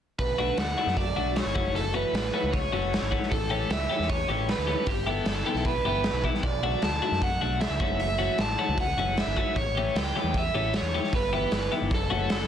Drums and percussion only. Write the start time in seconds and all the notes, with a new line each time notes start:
0.19 kick, open hi-hat
0.57 snare, open hi-hat
0.87 snare
0.97 kick, open hi-hat
1.36 snare, open hi-hat
1.56 kick
1.76 open hi-hat
2.15 snare, open hi-hat
2.54 kick, open hi-hat
2.93 snare, open hi-hat
3.12 kick
3.23 snare
3.32 kick, open hi-hat
3.70 snare, open hi-hat
4.01 snare
4.10 kick, open hi-hat
4.49 snare, open hi-hat
4.86 kick, open hi-hat
5.26 snare, open hi-hat
5.56 snare
5.65 kick, open hi-hat
6.04 snare, open hi-hat
6.24 kick
6.34 snare
6.43 kick, open hi-hat
6.82 snare, open hi-hat
7.13 snare
7.22 kick, open hi-hat
7.61 snare, open hi-hat
7.80 kick
8.00 open hi-hat
8.38 snare, open hi-hat
8.78 kick, open hi-hat
9.17 snare, open hi-hat
9.37 kick
9.56 kick, open hi-hat
9.96 snare, open hi-hat
10.34 kick, open hi-hat
10.73 snare, open hi-hat
11.04 snare
11.13 kick, open hi-hat
11.51 snare, open hi-hat
11.91 kick, open hi-hat
12.29 snare, open hi-hat